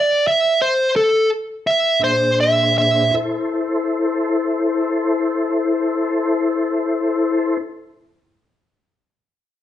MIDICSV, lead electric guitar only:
0, 0, Header, 1, 2, 480
1, 0, Start_track
1, 0, Key_signature, 0, "minor"
1, 0, Tempo, 672646
1, 665, Tempo, 714286
1, 1625, Tempo, 779221
1, 2095, Time_signature, 12, 3, 24, 8
1, 6099, End_track
2, 0, Start_track
2, 0, Title_t, "Lead electric guitar"
2, 0, Program_c, 0, 29
2, 0, Note_on_c, 0, 74, 85
2, 186, Note_off_c, 0, 74, 0
2, 196, Note_on_c, 0, 76, 85
2, 422, Note_off_c, 0, 76, 0
2, 440, Note_on_c, 0, 72, 88
2, 667, Note_off_c, 0, 72, 0
2, 685, Note_on_c, 0, 69, 93
2, 902, Note_off_c, 0, 69, 0
2, 1161, Note_on_c, 0, 76, 94
2, 1384, Note_off_c, 0, 76, 0
2, 1409, Note_on_c, 0, 72, 90
2, 1633, Note_off_c, 0, 72, 0
2, 1652, Note_on_c, 0, 76, 91
2, 1864, Note_off_c, 0, 76, 0
2, 1884, Note_on_c, 0, 76, 92
2, 2101, Note_off_c, 0, 76, 0
2, 6099, End_track
0, 0, End_of_file